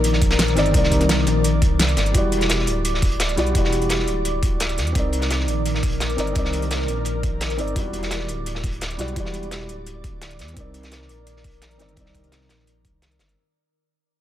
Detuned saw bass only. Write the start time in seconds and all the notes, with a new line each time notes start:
Already playing: A#1
0.57 G1
0.74 C2
1.27 A#1
1.62 C2
1.97 G1
2.15 E1
2.67 D1
3.37 B1
3.55 E1
4.08 D1
4.78 E2
4.95 C2
5.48 A#1
6.18 G1
6.36 C2
6.88 A#1
7.59 G1
7.76 E1
8.29 D1
8.99 B1
9.16 E1
9.69 D1
10.39 E2
10.57 C2
11.09 A#1
11.80 G1
11.97 C2
12.50 A#1
12.85 C2
13.20 G1